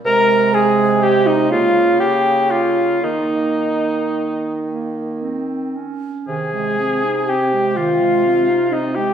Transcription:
X:1
M:6/8
L:1/16
Q:3/8=40
K:Ab
V:1 name="Flute"
b2 a2 g e f2 g2 f2 | e6 z6 | a4 g2 f4 e g |]
V:2 name="French horn"
B2 A2 G E F2 G2 F2 | E6 z6 | A4 G2 F4 E G |]
V:3 name="Oboe"
B2 A2 G E F2 G2 F2 | E6 z6 | A4 G2 F4 E G |]
V:4 name="Clarinet"
A,6 B,6 | B,6 B,2 C2 D2 | E, A, C E C A, E, A, C E C A, |]
V:5 name="Bassoon" clef=bass
C,6 D,6 | E,8- E,2 z2 | C,12 |]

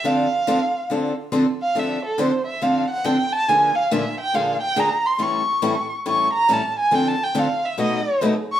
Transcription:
X:1
M:4/4
L:1/8
Q:"Swing" 1/4=140
K:Dm
V:1 name="Violin"
f4 z3 f | e A c e f ^f g a | _a f e g f g b c' | ^c'3 z c' b a ^g |
(3g a g f e ^d2 z ^c' |]
V:2 name="Steel-string acoustic guitar"
[D,F,CDA] z [D,F,CDA] z [D,F,CDA] z [D,F,CDA] z | [D,F,CDA] z [D,F,CDA] z [D,F,CDA] z [D,F,CDA] z | [B,,D,F,B,D_A] z [B,,D,F,B,DA] z [B,,D,F,B,DA] z [B,,D,F,B,DA] z | [A,,E,G,^CEA] z [A,,E,G,CEA] z [A,,E,G,CEA] z [A,,E,G,CEA] z |
[D,F,CDA] z [D,F,CDA] z [=B,,^F,A,^D^F] z [B,,F,A,DF] z |]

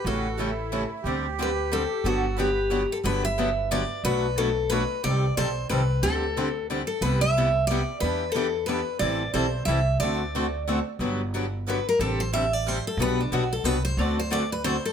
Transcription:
X:1
M:3/4
L:1/16
Q:"Swing" 1/4=181
K:G
V:1 name="Steel-string acoustic guitar"
A8- A2 z2 | z4 B4 A4 | F4 G6 A2 | B2 e6 d4 |
B4 A4 B4 | d4 c4 B4 | A8 z2 A2 | B2 e6 d4 |
B4 A4 B4 | d4 c4 e4 | d8 z4 | z8 B2 _B2 |
A2 c2 e2 d2 c2 A2 | B2 D2 F2 A2 B2 c2 | d2 c2 d2 B2 c2 A2 |]
V:2 name="Accordion"
F4 E8 | G12 | A4 B6 z2 | z12 |
z12 | z12 | z12 | z12 |
z12 | z12 | z12 | z12 |
z12 | z12 | z12 |]
V:3 name="Steel-string acoustic guitar"
[E,G,^CEA]2 z2 [E,G,CEA] z3 [E,G,CEA] z3 | [D,G,CDG]2 z2 [D,G,CDG] z3 [D,G,CDG] z3 | [D,F,B,DG]2 z2 [D,F,B,DG] z3 [D,F,B,DG] z3 | [D,F,B,DG]2 z2 [D,F,B,DG] z3 [D,F,B,DG]2 z2 |
[B,,F,A,DFB]2 z2 [B,,F,A,DFB]2 z2 [B,,F,A,DFB]2 z2 | [C,_E,G,CGA]2 z2 [C,E,G,CGA]2 z2 [C,E,G,CGA]2 z2 | [D,G,CDG]2 z2 [D,G,CDG]2 z2 [D,G,CDG]2 z2 | [C,G,B,EG]2 z2 [C,G,B,EG]2 z2 [C,G,B,EG]2 z2 |
[E,G,DEB]2 z2 [E,G,DEB]2 z2 [E,G,DEB]2 z2 | [E,G,CEA]2 z2 [E,G,CEA]2 z2 [E,G,CEA]2 z2 | [D,A,CFA]2 z2 [D,A,CFA]2 z2 [D,A,CFA]2 z2 | [D,F,B,DG]2 z2 [D,F,B,DG]2 z2 [D,F,B,DG]2 z2 |
[C,G,CDG]2 z2 [C,G,CDG]2 z2 [C,G,CDG]2 z2 | [B,,F,B,DGB]2 z2 [B,,F,B,DGB]2 z2 [B,,F,B,DGB]2 z2 | [D,A,CFA]2 z2 [D,A,CFA] z3 [D,A,CFA] z3 |]
V:4 name="Steel-string acoustic guitar"
[^C,E,A,^CG]2 z2 [C,E,A,CG] z3 [C,E,A,CG] z3 | [D,G,CDG]2 z2 [D,G,CDG] z3 [D,G,CDG] z3 | [D,F,B,DG]2 z2 [D,F,B,DG] z3 [D,F,B,DG] z3 | [D,F,B,DG]2 z2 [D,F,B,DG] z3 [D,F,B,DG]2 z2 |
[B,,F,A,DF]2 z2 [B,,F,A,DF]2 z2 [B,,F,A,DF]2 z2 | [C,_E,G,CGA]2 z2 [C,E,G,CGA]2 z2 [C,E,G,CGA]2 z2 | [D,G,CDG]2 z2 [D,G,CDG]2 z2 [D,G,CDG]2 z2 | [C,G,B,EG]2 z2 [C,G,B,EG]2 z2 [C,G,B,EG]2 z2 |
[E,B,DG]2 z2 [E,B,DG]2 z2 [E,B,DG]2 z2 | [E,G,CEA]2 z2 [E,G,CEA]2 z2 [E,G,CEA]2 z2 | [D,A,CFA]2 z2 [D,A,CFA]2 z2 [D,A,CFA]2 z2 | [D,F,B,DG]2 z2 [D,F,B,DG]2 z2 [D,F,B,DG]2 z2 |
[C,G,CDG]2 z2 [C,G,CDG]2 z2 [C,G,CDG]2 z2 | [B,,G,B,DF]2 z2 [B,,G,B,DF]2 z2 [B,,G,B,DF]2 z2 | [D,A,CFA]2 z2 [D,A,CFA] z3 [D,A,CFA] z3 |]
V:5 name="Upright bass" clef=bass
A,,,12 | D,,12 | G,,,12 | G,,,12 |
B,,,12 | C,,4 B,,,4 C,,4 | D,,12 | C,,12 |
E,,12 | A,,,4 B,,,4 C,,4 | D,,12 | G,,,12 |
A,,,12 | B,,,4 B,,,4 C,,4 | D,,12 |]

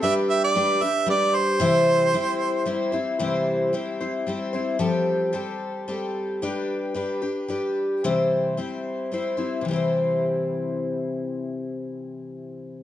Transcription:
X:1
M:3/4
L:1/16
Q:1/4=112
K:C
V:1 name="Harmonica"
e2 e d3 e2 d2 c2- | c8 z4 | z12 | z12 |
z12 | z12 | z12 | z12 |]
V:2 name="Twelve-string acoustic guitar"
[G,DGB]4 [G,DGB]2 [DGB]2 [G,DGB]4 | [C,E,G,CEc]4 [G,CEc]4 [G,CEc]2 [G,CEc]2 | [C,E,G,CEc]4 [G,CEc]2 [G,CEc]2 [G,CEc]2 [G,CEc]2 | [F,G,CGA]4 [G,CGA]4 [G,CGA]4 |
[G,DGB]4 [G,DGB]2 [DGB]2 [G,DGB]4 | [C,E,G,CEc]4 [G,CEc]4 [G,CEc]2 [G,CEc]2 | [C,E,G,CEc]12- | [C,E,G,CEc]12 |]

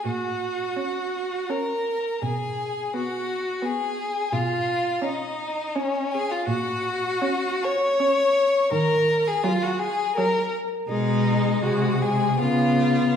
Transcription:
X:1
M:3/4
L:1/16
Q:1/4=83
K:F#
V:1 name="Violin"
f8 a4 | g4 f4 g4 | e4 d4 c2 g e | f6 c'6 |
a3 g e f g2 a2 z2 | d4 f2 g2 e4 |]
V:2 name="Violin"
F8 A4 | G4 F4 G4 | E4 D4 C2 G E | F6 c6 |
A3 G E F G2 A2 z2 | D4 F2 G2 E4 |]
V:3 name="Viola"
z4 C4 C4 | z4 B,4 B,4 | z4 C4 C4 | z4 C4 C4 |
z4 F,4 F,4 | G,4 G,2 G,2 B,4 |]
V:4 name="Cello" clef=bass
A,,4 z8 | B,,4 z8 | B,,4 z8 | A,,4 z8 |
D,4 z8 | B,,4 ^B,,4 C,4 |]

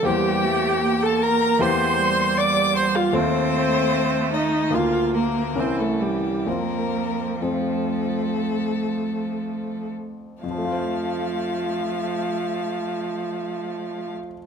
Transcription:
X:1
M:4/4
L:1/16
Q:1/4=65
K:F
V:1 name="Violin"
g4- g a b2 c'4 d'2 c' f | c6 _e2 f2 B2 c A G2 | B4 A8- A2 z2 | f16 |]
V:2 name="Viola"
G4- G A B2 c4 d2 c F | C6 _E2 F2 B,2 C A, G,2 | B,4 A,8- A,2 z2 | F,16 |]
V:3 name="Grand piano"
[E,,B,Gc]8 [E,,B,Gc]8 | [_E,,A,Fc]8 [D,,B,FB]4 [C,,_D=EB]4 | [F,,CFc]4 [F,,CFc]12 | [F,,F,A,Fcf]16 |]
V:4 name="Cello"
G,2 A,2 B,4 A,2 G,6 | A,8 B,4 E,4 | F,12- F,2 z2 | A,16 |]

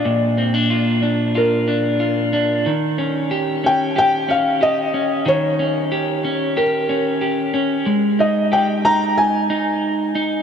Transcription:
X:1
M:4/4
L:1/16
Q:1/4=92
K:Ebmix
V:1 name="Felt piano"
=d8 B6 z2 | z6 g2 g2 f2 e4 | d8 B6 z2 | z2 e2 g2 b2 a8 |]
V:2 name="Clean electric guitar"
[B,,=DF]2 C D F2 D2 F2 D2 F2 D2 | E,2 D2 G2 D2 G2 D2 G2 D2 | E,2 D2 G2 D2 G2 D2 G2 D2 | A,2 E2 G2 E4 E4 E2 |]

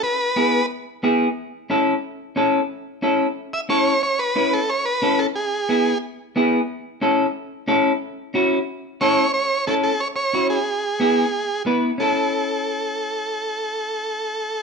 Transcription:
X:1
M:4/4
L:1/8
Q:1/4=180
K:A
V:1 name="Transistor combo organ"
B4 z4 | z8 | z4 z e c2 | c B2 A c B2 A |
G4 z4 | z8 | z6 c2 | c2 A A c c2 G- |
G6 z2 | A8- | A8 |]
V:2 name="Clean electric guitar"
z2 [B,EG] z3 [B,EG] z | z2 [CEA] z3 [CEA] z | z2 [CEA] z3 [CEA] z | z2 [CEB] z3 [CEA] z |
z2 [B,EG] z3 [B,EG] z | z2 [CEA] z3 [CEA] z | z2 [CEF] z3 [CEA] z | z2 [CEA] z3 [CEF] z |
z2 [B,EG] z3 [B,EB] z | [CEA]8- | [CEA]8 |]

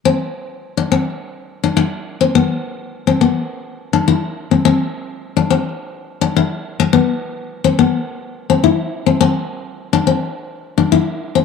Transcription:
X:1
M:4/4
L:1/16
Q:1/4=105
K:C
V:1 name="Steel-string acoustic guitar"
C2 z3 D C2 z3 D z3 C | B,2 z3 C B,2 z3 D E2 z C | C2 z3 D C2 z3 D E2 z2 | B,2 z3 C B,2 z3 C E2 z C |
C2 z3 D C2 z3 D E2 z C |]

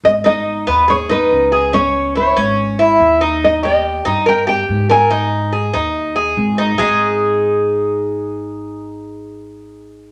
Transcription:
X:1
M:4/4
L:1/8
Q:1/4=142
K:G#m
V:1 name="Nylon-string guitar"
d d3 c B3 | c2 c4 z2 | d d3 =g g2 ^g- | g6 z2 |
z8 | z8 |]
V:2 name="Cuban tres"
z D2 B, G D2 G | C2 E C2 E2 D- | D =G2 D A G2 A | D2 G D2 G2 D |
[G,DG]8- | [G,DG]8 |]
V:3 name="Upright bass" clef=bass
G,,,3 D,,3 C,,2- | C,,3 G,,,3 D,,2- | D,,3 =G,,3 ^G,,2- | G,,3 D,,3 G,,,2 |
G,,,8- | G,,,8 |]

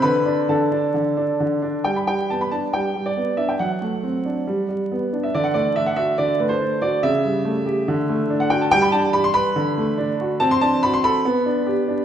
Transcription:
X:1
M:4/4
L:1/16
Q:1/4=141
K:G
V:1 name="Grand piano"
[Bb]4 [Aa]8 z4 | g b g2 a b a2 g3 d3 e g | f12- f3 e | d f d2 e f e2 d2 B c3 d2 |
e12- e f g a | g b a2 b c' b8- b2 | a c' a2 b c' b8- b2 |]
V:2 name="Grand piano"
D,2 D2 D,2 D2 D,2 D2 D,2 D2 | G,2 G,2 B,2 D2 G,2 G,2 B,2 D2 | F,2 A,2 C2 D2 G,2 G,2 B,2 D2 | D,2 A,2 D2 F2 D,2 A,2 D2 F2 |
^C,2 G,2 A,2 G2 D,2 A,2 D2 F2 | G,2 D2 G2 B2 D,2 A,2 D2 F2 | C2 D2 F2 A2 B,2 D2 G2 D2 |]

